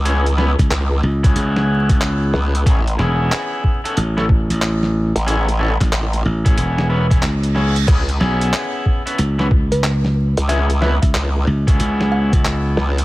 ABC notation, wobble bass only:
X:1
M:4/4
L:1/16
Q:"Swing 16ths" 1/4=92
K:C#m
V:1 name="Wobble bass" clef=bass
C,,3 z C,,2 z8 C,,2 | A,,,2 z12 z A,,,- | A,,,3 z A,,,2 z8 z2 | C,,2 z12 z C,,- |
C,,3 z C,,2 z8 C,,2 |]